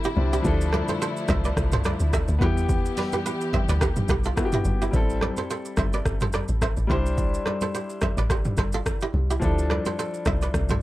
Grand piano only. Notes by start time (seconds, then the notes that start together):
Already playing: G3 C4 D4 E4 C5
0.16 G3 C4 D4 E4 D5
0.42 F3 A3 D4 E4
0.47 A4
2.39 B3 E4
2.44 G4
4.36 B3 E4 F#4
4.45 G4
4.91 G3 C4 E4
4.96 A4
6.87 G3 D4 E4
6.92 C5
9.40 F3 D4 E4
9.45 A4